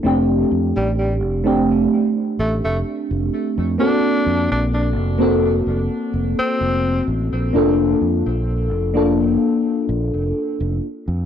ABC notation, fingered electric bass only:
X:1
M:4/4
L:1/16
Q:"Swing 16ths" 1/4=64
K:Bblyd
V:1 name="Fingered electric bass" clef=bass
F,,,2 F,, A,,,2 F,,,3 z2 A,,, F,,, z F,,, z F,, | z2 F,, B,,,2 F,,,3 F,,, z F,,, z F,,,2 A,,, B,,, | F,,,2 F,, B,,,2 F,,,3 z2 B,,, F,,, z F,,, z F,, |]